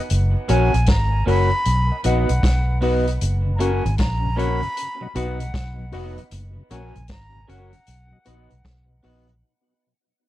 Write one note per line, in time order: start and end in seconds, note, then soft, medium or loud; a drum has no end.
0.10 0.34 F#1 loud
0.10 closed hi-hat medium
0.48 0.73 A#1 loud
0.48 0.71 A#3 medium
0.48 0.72 C#4 medium
0.48 0.72 F#4 loud
0.48 0.72 F#4 medium
0.48 0.72 A#4 medium
0.48 0.72 C#5 medium
0.48 0.73 F#5 loud
0.48 0.90 G#5 loud
0.48 closed hi-hat medium
0.74 0.87 A#1 medium
0.74 closed hi-hat soft
0.86 1.25 G#1 loud
0.86 1.27 A#5 medium
0.86 kick loud
0.86 snare loud
0.86 closed hi-hat medium
1.26 1.50 F#1 loud
1.26 1.49 A#3 medium
1.26 1.50 C#4 medium
1.26 1.50 F#4 loud
1.26 1.50 A#4 medium
1.26 1.50 A#4 loud
1.26 1.50 C#5 medium
1.26 1.50 F#5 loud
1.26 2.01 B5 loud
1.26 open hi-hat medium
1.51 closed hi-hat soft
1.65 1.90 B1 medium
1.65 closed hi-hat loud
1.92 1.97 D#5 soft
1.92 1.97 F#5 soft
2.04 2.28 A#1 loud
2.04 2.27 B3 medium
2.04 2.27 D#4 medium
2.04 2.28 F#4 medium
2.04 2.28 B4 medium
2.04 2.28 D#5 medium
2.04 2.79 F#5 medium
2.04 2.28 F#5 loud
2.04 closed hi-hat medium
2.29 2.43 B1 medium
2.29 closed hi-hat medium
2.43 3.17 B1 loud
2.43 kick loud
2.43 snare loud
2.43 closed hi-hat loud
2.81 3.05 B3 medium
2.81 3.05 D#4 loud
2.81 3.05 F#4 medium
2.81 3.05 F#4 loud
2.81 3.05 B4 medium
2.81 3.06 B4 medium
2.81 3.06 D#5 medium
2.81 3.06 F#5 loud
2.81 open hi-hat medium
3.07 3.13 D#5 soft
3.07 3.13 F#5 soft
3.07 closed hi-hat medium
3.21 3.82 F#1 loud
3.21 closed hi-hat loud
3.46 3.52 F#2 medium
3.46 3.52 C#3 medium
3.56 3.82 A#3 medium
3.56 3.71 A#3 medium
3.56 3.71 C#4 medium
3.56 3.83 C#4 medium
3.56 3.62 A#5 medium
3.60 3.72 F#4 medium
3.60 3.83 F#4 medium
3.60 3.83 A#4 medium
3.60 3.84 C#5 medium
3.60 3.84 F#5 loud
3.60 3.98 G#5 loud
3.60 closed hi-hat medium
3.84 3.98 G#1 loud
3.84 3.91 F#2 medium
3.84 3.91 C#3 medium
3.84 closed hi-hat medium
3.98 4.60 A#1 loud
3.98 4.39 A#5 loud
3.98 kick loud
3.98 snare loud
3.98 closed hi-hat medium
4.23 4.30 F#2 medium
4.23 4.30 C#3 medium
4.36 4.60 A#3 loud
4.36 4.49 A#3 medium
4.36 4.60 C#4 medium
4.36 4.49 C#4 medium
4.36 4.49 F#4 medium
4.36 4.61 F#4 medium
4.36 4.61 A#4 loud
4.36 4.61 A#4 medium
4.36 4.61 C#5 medium
4.36 4.61 F#5 loud
4.36 5.18 B5 loud
4.36 closed hi-hat medium
4.61 4.69 F#2 medium
4.61 4.69 C#3 medium
4.61 closed hi-hat soft
4.77 closed hi-hat loud
5.01 5.08 B2 medium
5.01 5.08 F#3 medium
5.01 5.07 D#5 soft
5.01 5.07 F#5 soft
5.01 muted clean electric guitar stroke medium
5.15 5.52 B1 loud
5.15 5.27 B3 medium
5.15 5.38 B3 medium
5.15 5.27 D#4 medium
5.15 5.38 D#4 medium
5.15 5.27 F#4 medium
5.15 5.39 F#4 loud
5.15 5.39 F#4 medium
5.15 5.39 B4 medium
5.15 5.39 B4 loud
5.15 5.39 D#5 loud
5.15 5.93 F#5 medium
5.15 5.39 F#5 loud
5.15 closed hi-hat medium
5.40 5.47 B2 medium
5.40 5.47 F#3 medium
5.40 closed hi-hat medium
5.54 5.91 B1 medium
5.54 kick loud
5.54 snare loud
5.54 closed hi-hat medium
5.79 5.86 B2 medium
5.79 5.86 F#3 medium
5.92 6.17 F1 medium
5.92 6.04 B3 medium
5.92 6.16 B3 medium
5.92 6.04 D#4 medium
5.92 6.16 D#4 medium
5.92 6.05 F#4 medium
5.92 6.16 F#4 loud
5.92 6.17 F#4 medium
5.92 6.16 B4 medium
5.92 6.17 B4 medium
5.92 6.16 D#5 medium
5.92 6.17 F#5 loud
5.92 open hi-hat medium
6.17 6.24 B2 medium
6.17 6.24 F#3 medium
6.17 6.24 D#5 soft
6.17 6.24 F#5 soft
6.17 closed hi-hat medium
6.31 6.56 F#1 loud
6.31 closed hi-hat loud
6.56 6.63 F#2 medium
6.56 6.63 C#3 medium
6.70 6.95 A#1 medium
6.70 6.82 A#3 medium
6.70 6.94 A#3 medium
6.70 6.83 C#4 medium
6.70 6.94 C#4 medium
6.70 6.83 F#4 medium
6.70 6.94 F#4 loud
6.70 6.94 A#4 medium
6.70 6.95 A#4 loud
6.70 6.94 C#5 medium
6.70 6.95 F#5 loud
6.70 7.07 G#5 medium
6.70 closed hi-hat medium
6.95 7.09 A#1 loud
6.95 7.02 F#2 medium
6.95 7.02 C#3 medium
6.95 closed hi-hat medium
7.08 7.47 G#1 medium
7.08 7.51 A#5 loud
7.08 kick loud
7.08 snare loud
7.08 closed hi-hat medium
7.34 7.41 F#2 medium
7.34 7.41 C#3 medium
7.48 7.73 F#1 loud
7.48 7.71 A#3 medium
7.48 7.60 A#3 medium
7.48 7.60 C#4 medium
7.48 7.71 C#4 medium
7.48 7.72 F#4 loud
7.48 7.60 F#4 medium
7.48 7.72 F#4 medium
7.48 7.72 A#4 medium
7.48 7.72 C#5 medium
7.48 7.72 F#5 loud
7.48 9.05 F#5 loud
7.48 closed hi-hat medium
7.73 7.80 F#2 medium
7.73 7.80 C#3 medium
7.73 closed hi-hat medium
7.87 8.12 B1 loud
7.87 closed hi-hat loud
8.12 8.19 B2 medium
8.12 8.19 F#3 medium
8.12 8.18 D#5 soft
8.12 8.18 F#5 soft
8.25 8.50 A#1 medium
8.25 8.38 B3 medium
8.25 8.49 B3 medium
8.25 8.38 D#4 medium
8.25 8.49 D#4 medium
8.25 8.49 F#4 loud
8.25 8.38 F#4 medium
8.25 8.50 F#4 medium
8.25 8.49 B4 medium
8.25 8.50 B4 medium
8.25 8.50 D#5 medium
8.25 8.50 F#5 loud
8.25 closed hi-hat loud
8.50 8.64 B1 medium
8.50 8.57 B2 medium
8.50 8.57 F#3 medium
8.50 closed hi-hat medium
8.65 9.02 B1 medium
8.65 kick loud
8.65 snare loud
8.65 closed hi-hat medium
8.89 8.96 B2 medium
8.89 8.96 F#3 medium
9.03 9.41 A#1 medium
9.03 9.15 B3 medium
9.03 9.26 B3 medium
9.03 9.15 D#4 medium
9.03 9.27 D#4 medium
9.03 9.16 F#4 medium
9.03 9.27 F#4 loud
9.03 9.27 F#4 medium
9.03 9.27 B4 medium
9.03 9.27 D#5 medium
9.03 9.28 F#5 loud
9.03 open hi-hat medium
9.28 9.35 B2 medium
9.28 9.35 F#3 medium
9.28 9.35 D#5 soft
9.28 9.35 F#5 soft
9.28 closed hi-hat medium